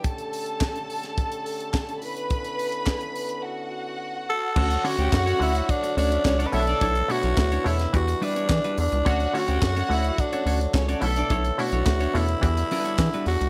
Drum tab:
CC |----------------|----------------|x---------------|----------------|
HH |xxoxxxoxxxoxxxox|xxoxxxox--------|-xoxxxoxxxoxxxox|xxoxxxoxxxoxxxox|
CP |----x-------x---|----x-----------|----x-------x---|----x-------x---|
SD |----o--o----o---|----o-----------|----o-------o---|----o--o----o---|
BD |o---o---o---o---|o---o-----------|o---o---o---o---|o---o---o---o---|

CC |----------------|----------------|
HH |xxoxxxoxxxoxxxox|xxoxxxoxxxoxxxox|
CP |----x-------x---|----x-------x---|
SD |----o-------o---|----o-------o---|
BD |o---o---o---o---|o---o---o---o---|